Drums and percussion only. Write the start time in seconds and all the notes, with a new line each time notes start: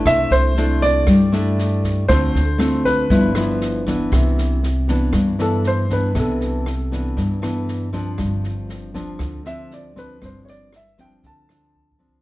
0.05 kick, cross-stick, snare
0.31 snare
0.56 snare
0.82 kick, snare
1.07 kick, cross-stick, snare
1.32 snare
1.59 snare
1.84 kick, snare
2.09 kick, cross-stick, snare
2.35 snare
2.60 cross-stick, snare
2.85 kick, snare
3.10 kick, snare
3.35 cross-stick, snare
3.61 snare
3.87 kick, snare
4.12 kick, cross-stick, snare
4.38 snare
4.63 snare
4.88 kick, snare
5.13 kick, cross-stick, snare
5.39 snare
5.64 snare
5.90 kick, snare
6.15 kick, cross-stick, snare
6.41 snare
6.66 cross-stick, snare
6.92 kick, snare
7.17 kick, snare
7.43 cross-stick, snare
7.68 snare
7.93 kick, snare
8.18 kick, cross-stick, snare
8.44 snare
8.69 snare
8.94 kick, snare
9.19 kick, cross-stick, snare
9.45 snare
9.71 snare
9.96 kick, snare
10.22 kick, cross-stick, snare
10.47 snare
10.73 cross-stick, snare
10.98 kick, snare
11.23 kick, snare
11.49 cross-stick, snare
11.75 kick
11.92 kick
12.09 kick